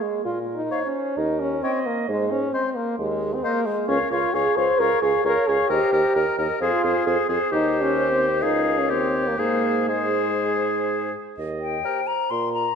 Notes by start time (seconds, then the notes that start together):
Already playing: G#4
0.02 G#3
0.25 A#2 F4 A#4
0.55 D#4
0.70 C5 C#5 F5
0.86 C#4
1.17 D#2 D#4 A#4
1.40 C#4
1.63 C4 C#5 D#5 G5
1.86 A#3
2.08 G#2 G#3 C5
2.31 C#4
2.53 C4 C5 D#5
2.76 A#3
2.99 D#2 G#3 G#4
3.34 C4
3.44 A#3 C5 D#5
3.66 G#3
3.88 C#2 C#4 A#4 C#5 F5
4.11 C#2 F4 C#5 F5
4.33 C#2 G#4 C#5 F5
4.57 C#2 C5 C#5 F5
4.79 C#2 A#4 C#5 F5
5.02 C#2 G#4 C#5 F5
5.24 C#2 A#4 C#5 F5
5.47 C#2 G#4 C#5 F5
5.69 D#2 G4 A#4 C5 D#5
5.92 D#2 A#4 D#5
6.15 D#2 A#4 D#5
6.38 D#2 A#4 D#5
6.61 F2 F4 G#4 C5
6.84 F2 G#4 C5
7.06 F2 G#4 C5
7.29 F2 G#4 C5
7.52 D#2 D#4 G4 C5
7.81 C#4
7.97 C5
8.12 C4
8.42 C#2 D#4 G#4 A#4 F5
8.79 C#4
8.89 D#2 C4 G4 C#5
9.28 A#3
9.38 G#2 A#3 G#4 C5
9.88 G#3 G#4 C5
11.38 D#2 D#5
11.61 G5
11.85 G4 A#4 C5
12.07 A#5
12.30 A#2 A#4 C6
12.53 A#5